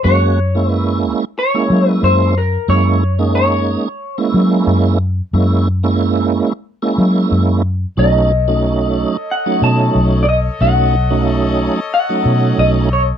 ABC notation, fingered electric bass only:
X:1
M:4/4
L:1/8
Q:"Swing 16ths" 1/4=91
K:B
V:1 name="Fingered electric bass" clef=bass
F,,4 z F, F,,2 | F,,4 z F, F,,2 | F,,4 z F, F,,2 | B,,,4 z B,, B,,,2 |
B,,,4 z B,, B,,,2 |]